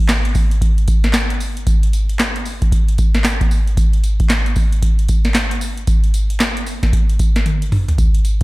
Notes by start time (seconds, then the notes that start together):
0.09 snare, clap, closed hi-hat, tambourine
0.25 closed hi-hat
0.35 kick, open hi-hat, tambourine
0.51 closed hi-hat
0.61 kick, closed hi-hat
0.78 closed hi-hat
0.88 kick, closed hi-hat, tambourine
1.04 snare, closed hi-hat
1.13 snare, clap, closed hi-hat, tambourine
1.30 closed hi-hat
1.40 open hi-hat, tambourine
1.57 closed hi-hat
1.67 kick, closed hi-hat, tambourine
1.83 closed hi-hat
1.93 closed hi-hat, tambourine
2.09 closed hi-hat
2.19 snare, clap, closed hi-hat, tambourine
2.36 closed hi-hat
2.45 open hi-hat, tambourine
2.62 kick, closed hi-hat
2.72 kick, closed hi-hat
2.88 closed hi-hat
2.98 kick, closed hi-hat, tambourine
3.14 snare, closed hi-hat
3.24 snare, clap, closed hi-hat, tambourine
3.41 kick, closed hi-hat
3.51 open hi-hat, tambourine
3.67 closed hi-hat
3.77 kick, closed hi-hat, tambourine
3.93 closed hi-hat
4.04 closed hi-hat, tambourine
4.20 kick, closed hi-hat
4.29 snare, clap, closed hi-hat, tambourine
4.46 closed hi-hat
4.56 kick, open hi-hat, tambourine
4.72 closed hi-hat
4.82 kick, closed hi-hat
4.99 closed hi-hat
5.09 kick, closed hi-hat, tambourine
5.25 snare, closed hi-hat
5.34 snare, clap, closed hi-hat, tambourine
5.51 closed hi-hat
5.61 open hi-hat, tambourine
5.77 closed hi-hat
5.87 kick, closed hi-hat, tambourine
6.04 closed hi-hat
6.14 closed hi-hat, tambourine
6.30 closed hi-hat
6.40 snare, clap, closed hi-hat, tambourine
6.57 closed hi-hat
6.66 open hi-hat, tambourine
6.83 kick, snare, closed hi-hat
6.93 kick, closed hi-hat
7.10 closed hi-hat
7.19 kick, closed hi-hat, tambourine
7.36 snare, closed hi-hat
7.46 closed hi-hat, high tom
7.62 closed hi-hat
7.72 mid tom, open hi-hat
7.88 closed hi-hat, floor tom
7.98 kick, closed hi-hat, tambourine
8.15 closed hi-hat
8.25 closed hi-hat, tambourine